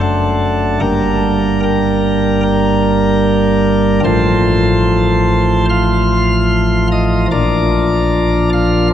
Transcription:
0.00 0.78 F#1 medium
0.00 0.78 F#2 medium
0.00 0.78 A3 soft
0.00 0.78 D4 soft
0.00 0.79 A4 medium
0.00 0.79 F#5 medium
0.00 0.80 A5 medium
0.80 4.00 G1 medium
0.80 4.00 G2 medium
0.80 4.00 G3 soft
0.80 4.00 A#3 soft
0.80 4.00 D4 soft
0.80 1.60 A#4 medium
0.80 1.60 G5 medium
0.80 1.60 A#5 loud
1.63 2.41 A#4 medium
1.63 2.41 G5 medium
1.63 2.41 A#5 medium
2.43 4.00 A#4 medium
2.43 4.00 G5 medium
2.43 4.00 A#5 loud
4.04 7.27 A1 medium
4.04 7.27 A2 medium
4.04 7.27 F3 soft
4.04 7.27 A3 soft
4.04 7.27 F4 medium
4.04 5.65 C5 medium
4.04 5.65 A5 medium
4.04 5.65 C6 loud
5.69 6.88 F5 loud
5.69 6.88 C6 medium
5.69 6.87 F6 loud
6.91 7.26 D#5 medium
6.91 7.26 D#6 loud
7.31 8.90 A#1 medium
7.31 8.90 A#2 medium
7.31 8.90 F3 medium
7.31 8.90 D4 medium
7.31 8.90 F4 medium
7.31 8.50 D5 medium
7.31 8.49 A#5 medium
7.31 8.49 D6 loud
8.53 8.88 F5 medium
8.53 8.88 F6 loud

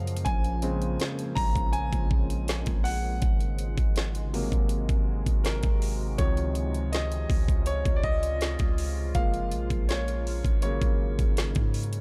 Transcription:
0.00 0.24 F#2 medium
0.00 0.22 C#3 medium
0.00 0.28 F3 medium
0.00 3.18 F3 medium
0.00 0.28 G#3 soft
0.00 0.28 A#3 medium
0.00 3.18 A#3 medium
0.00 0.28 D#5 loud
0.00 0.27 F5 loud
0.00 0.28 F#5 loud
0.07 closed hi-hat medium
0.17 closed hi-hat medium
0.25 0.97 A#1 loud
0.25 3.19 C#3 medium
0.25 9.11 G#3 medium
0.25 0.95 G#5 loud
0.25 kick loud
0.25 closed hi-hat medium
0.44 closed hi-hat medium
0.62 1.12 C#3 medium
0.62 1.12 G#3 medium
0.62 1.13 C4 medium
0.62 closed hi-hat medium
0.82 closed hi-hat medium
1.00 snare loud
1.00 closed hi-hat medium
1.19 closed hi-hat medium
1.35 1.90 A#1 loud
1.35 1.74 A#5 loud
1.35 kick loud
1.35 open hi-hat medium
1.56 kick medium
1.56 closed hi-hat medium
1.73 2.88 G#5 loud
1.73 closed hi-hat medium
1.93 2.64 A#1 loud
1.93 kick medium
1.93 closed hi-hat medium
2.11 kick loud
2.30 closed hi-hat medium
2.48 snare loud
2.48 closed hi-hat medium
2.66 3.20 A#1 loud
2.66 kick loud
2.66 closed hi-hat medium
2.84 5.03 F#5 loud
2.84 open hi-hat medium
3.22 3.76 G#1 loud
3.22 9.11 C3 medium
3.22 6.16 D#3 medium
3.22 6.16 F#4 medium
3.22 kick loud
3.22 closed hi-hat medium
3.40 closed hi-hat medium
3.59 closed hi-hat medium
3.78 4.49 G#1 medium
3.78 kick medium
3.78 closed hi-hat medium
3.96 snare loud
3.96 closed hi-hat medium
4.15 closed hi-hat medium
4.33 4.83 C3 medium
4.33 4.83 F#3 medium
4.33 4.83 A#3 medium
4.33 open hi-hat medium
4.52 4.88 G#1 loud
4.52 kick medium
4.52 closed hi-hat soft
4.69 closed hi-hat medium
4.89 5.25 G#1 loud
4.89 kick loud
4.89 closed hi-hat medium
5.26 5.62 G#1 loud
5.26 kick medium
5.26 closed hi-hat medium
5.44 6.14 A#4 medium
5.44 snare loud
5.44 closed hi-hat medium
5.63 6.17 G#1 loud
5.63 kick loud
5.63 closed hi-hat medium
5.82 open hi-hat medium
6.18 7.26 C#2 loud
6.18 6.69 C3 medium
6.18 6.68 D#3 medium
6.18 6.68 F3 medium
6.18 10.59 F4 medium
6.18 6.95 C#5 medium
6.18 kick loud
6.18 closed hi-hat medium
6.37 closed hi-hat medium
6.55 closed hi-hat medium
6.74 closed hi-hat medium
6.92 7.69 D#5 medium
6.92 snare loud
6.92 closed hi-hat medium
7.12 closed hi-hat medium
7.30 7.83 C#2 loud
7.30 kick loud
7.30 open hi-hat medium
7.48 kick medium
7.48 closed hi-hat soft
7.66 7.98 C#5 loud
7.66 closed hi-hat medium
7.85 8.57 C#2 loud
7.85 kick medium
7.85 closed hi-hat medium
7.96 8.03 D5 medium
8.04 9.18 D#5 loud
8.04 kick medium
8.23 closed hi-hat medium
8.41 snare loud
8.41 closed hi-hat medium
8.59 9.13 C#2 loud
8.59 kick loud
8.59 closed hi-hat medium
8.78 open hi-hat medium
9.14 9.54 F#1 loud
9.14 12.01 C#3 medium
9.14 10.59 F3 medium
9.14 10.59 G#3 medium
9.14 10.61 A#3 medium
9.14 10.60 A#3 medium
9.14 9.91 F5 loud
9.14 kick loud
9.14 closed hi-hat medium
9.34 closed hi-hat medium
9.51 9.70 A#1 loud
9.51 closed hi-hat medium
9.70 10.42 A#1 loud
9.70 kick medium
9.70 closed hi-hat medium
9.89 10.61 C#5 medium
9.89 snare loud
9.89 closed hi-hat medium
10.08 closed hi-hat medium
10.27 open hi-hat medium
10.45 10.80 G#1 loud
10.45 kick medium
10.45 closed hi-hat soft
10.62 12.01 C#3 medium
10.62 12.01 F#3 medium
10.62 12.01 G#3 medium
10.62 12.01 A#3 medium
10.62 12.01 D#4 medium
10.62 11.33 C#5 medium
10.62 closed hi-hat medium
10.82 11.17 G#1 loud
10.82 kick loud
10.82 closed hi-hat medium
11.19 11.54 G#1 loud
11.19 kick medium
11.19 closed hi-hat medium
11.37 snare loud
11.37 closed hi-hat medium
11.55 12.01 G#2 loud
11.55 kick medium
11.55 closed hi-hat medium
11.74 closed hi-hat soft
11.74 open hi-hat medium
11.83 closed hi-hat medium
11.93 closed hi-hat medium

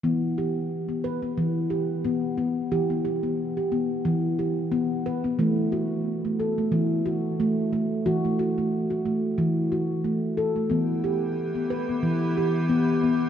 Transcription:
0.03 1.09 E3 medium
0.03 0.38 B3 medium
0.38 0.71 G4 medium
0.89 1.04 B3 soft
1.04 1.23 B4 medium
1.22 1.56 B3 medium
1.38 1.91 E3 medium
1.70 2.04 G4 medium
2.05 2.36 B3 medium
2.38 2.71 B3 medium
2.72 3.77 E3 medium
2.72 2.90 G4 medium
2.90 3.05 B3 medium
3.05 3.24 G4 medium
3.23 3.57 B3 medium
3.57 3.72 G4 medium
3.72 4.05 B3 medium
4.05 4.58 E3 medium
4.39 4.72 G4 medium
4.72 5.23 B3 medium
5.06 5.24 B4 medium
5.24 5.39 B3 medium
5.39 6.44 E3 medium
5.39 5.72 A3 medium
5.72 6.06 F#4 medium
6.25 6.39 A3 medium
6.40 6.58 A4 medium
6.58 6.91 A3 medium
6.72 7.24 E3 medium
7.06 7.39 F#4 medium
7.40 7.71 A3 medium
7.73 8.06 A3 medium
8.06 9.10 E3 medium
8.06 8.24 F#4 medium
8.25 8.39 A3 medium
8.39 8.57 F#4 medium
8.58 8.91 A3 medium
8.90 9.05 F#4 medium
9.05 9.38 A3 medium
9.38 9.90 E3 medium
9.72 10.05 F#4 medium
10.04 10.38 A3 medium
10.37 10.56 A4 medium
10.56 10.71 A3 medium
10.70 13.29 E3 medium
10.70 11.75 E3 medium
10.70 11.03 B3 medium
10.70 13.29 B3 medium
10.70 13.29 G4 medium
11.04 11.37 G4 medium
11.55 11.70 B3 medium
11.70 11.89 B4 medium
11.89 12.22 B3 medium
12.03 12.55 E3 medium
12.37 12.70 G4 medium
12.69 13.02 B3 medium
13.03 13.29 B3 medium

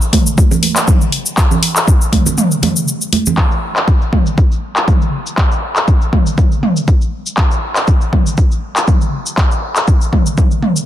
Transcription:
0.01 shaker soft
0.13 kick medium
0.13 mid tom medium
0.13 open hi-hat medium
0.13 high conga medium
0.27 shaker medium
0.38 kick loud
0.38 high conga medium
0.38 shaker medium
0.51 low conga medium
0.51 shaker soft
0.63 open hi-hat medium
0.63 high conga medium
0.76 clap medium
0.76 shaker medium
0.88 kick loud
0.88 mid tom medium
0.88 shaker medium
1.01 shaker soft
1.12 open hi-hat medium
1.26 shaker medium
1.38 kick loud
1.38 clap medium
1.38 shaker medium
1.51 low conga medium
1.51 shaker soft
1.63 open hi-hat medium
1.76 clap medium
1.76 shaker medium
1.88 kick loud
1.88 shaker medium
2.02 shaker soft
2.13 kick medium
2.13 mid tom medium
2.13 open hi-hat medium
2.13 high conga medium
2.26 low conga medium
2.26 shaker medium
2.38 mid tom medium
2.38 shaker medium
2.52 shaker soft
2.63 mid tom medium
2.63 open hi-hat medium
2.63 high conga medium
2.63 low conga loud
2.76 shaker medium
2.88 shaker medium
3.01 shaker soft
3.13 open hi-hat medium
3.13 high conga loud
3.26 low conga medium
3.26 shaker medium
3.38 kick loud
3.38 clap medium
3.38 shaker medium
3.51 shaker soft
3.76 clap medium
3.76 shaker medium
3.88 kick loud
3.88 shaker medium
4.02 shaker soft
4.13 kick medium
4.13 mid tom medium
4.26 shaker medium
4.38 kick loud
4.38 shaker medium
4.52 shaker soft
4.76 clap medium
4.76 shaker medium
4.88 kick loud
4.88 mid tom medium
4.88 shaker medium
5.02 shaker soft
5.27 shaker medium
5.38 kick loud
5.38 clap medium
5.38 shaker medium
5.52 shaker soft
5.76 clap medium
5.76 shaker medium
5.88 kick loud
5.88 shaker medium
6.01 shaker soft
6.13 kick medium
6.13 mid tom medium
6.27 shaker medium
6.38 kick loud
6.38 mid tom medium
6.38 shaker medium
6.52 shaker soft
6.63 mid tom medium
6.77 shaker medium
6.88 kick loud
6.88 shaker medium
7.01 shaker soft
7.26 shaker medium
7.37 kick loud
7.37 clap medium
7.37 shaker medium
7.51 shaker soft
7.76 clap medium
7.76 shaker medium
7.88 kick loud
7.88 shaker medium
8.01 shaker soft
8.13 kick medium
8.13 mid tom medium
8.27 shaker medium
8.38 kick loud
8.38 shaker medium
8.51 shaker soft
8.76 clap medium
8.76 shaker medium
8.88 kick loud
8.88 mid tom medium
8.88 shaker medium
9.01 shaker soft
9.26 shaker medium
9.38 kick loud
9.38 clap medium
9.38 shaker medium
9.51 shaker soft
9.76 clap medium
9.76 shaker medium
9.88 kick loud
9.88 shaker medium
10.01 shaker soft
10.13 kick medium
10.13 mid tom medium
10.26 shaker medium
10.38 kick loud
10.38 mid tom medium
10.38 shaker medium
10.51 shaker soft
10.63 mid tom medium
10.76 shaker medium

